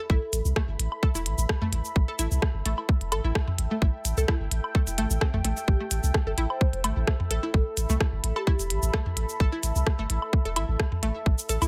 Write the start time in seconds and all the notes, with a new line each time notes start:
Already playing: A4 E5 B5
0.10 A1 E4 A4, kick
0.22 A4
0.33 A1, closed hi-hat, cabasa
0.45 C2, cabasa
0.56 A3, kick, cross-stick
0.68 G1
0.79 A1, closed hi-hat
0.92 low woodblock
1.03 A4, kick
1.15 E1 E4, closed hi-hat, cabasa
1.26 A1, closed hi-hat
1.38 A1, cabasa
1.49 kick, cross-stick
1.62 A3, mid tom
1.72 A1, closed hi-hat
1.85 cabasa
1.96 A1, kick
2.08 A4
2.19 A1 E4, closed hi-hat, cabasa
2.31 C2, cabasa
2.42 kick, cross-stick
2.55 G1
2.66 A1 A3, closed hi-hat
2.78 G5, low woodblock
2.89 kick
3.01 E1, closed hi-hat
3.12 A1 A4, closed hi-hat, low woodblock
3.24 A1 E4
3.35 kick, cross-stick
3.48 mid tom
3.58 A1, closed hi-hat
3.71 A3
3.82 A1, kick
4.05 A1, closed hi-hat, cabasa
4.17 C2 A4, cabasa
4.28 E4, kick, cross-stick
4.41 G1
4.51 A1, closed hi-hat
4.64 low woodblock
4.75 A3, kick
4.87 E1, closed hi-hat, cabasa
4.98 A1 A3, closed hi-hat
5.10 A1, cabasa
5.21 C4, kick, cross-stick
5.34 A1 A3, mid tom
5.45 A1 A3, closed hi-hat
5.57 cabasa
5.68 A1 G4, kick
5.80 A3
5.91 A1, closed hi-hat, cabasa
6.04 C2, cabasa
6.14 kick, cross-stick
6.27 G1 A4
6.38 A1 E4, closed hi-hat
6.50 C5 B5, low woodblock
6.61 C5, kick
6.73 E1, closed hi-hat
6.84 A1 A3, closed hi-hat, low woodblock
6.97 A1
7.07 kick, cross-stick
7.20 mid tom
7.31 A1 A4, closed hi-hat
7.43 E4 A4
7.54 A1 A4, kick
7.77 A1, closed hi-hat, cabasa
7.90 C2 A3, cabasa
8.00 kick, cross-stick
8.13 G1
8.24 A1, closed hi-hat
8.36 G4 A4, low woodblock
8.47 E4, kick
8.59 E1, closed hi-hat, cabasa
8.70 A1, closed hi-hat
8.83 A1, cabasa
8.93 A3, kick, cross-stick
9.06 mid tom
9.17 A1, closed hi-hat
9.29 cabasa
9.40 A1 A4, kick
9.52 E4
9.63 A1, closed hi-hat, cabasa
9.76 C2, cabasa
9.87 kick, cross-stick
9.99 G1 A3
10.10 A1, closed hi-hat
10.22 E6, low woodblock
10.33 kick
10.45 E1 A4, closed hi-hat
10.56 A1 E4, closed hi-hat, low woodblock
10.69 A1
10.80 kick, cross-stick
10.92 mid tom
11.03 A1 A3, closed hi-hat
11.26 A1, kick
11.39 cabasa
11.49 A1 A4, closed hi-hat, cabasa
11.62 C2 E4, closed hi-hat, cabasa, low woodblock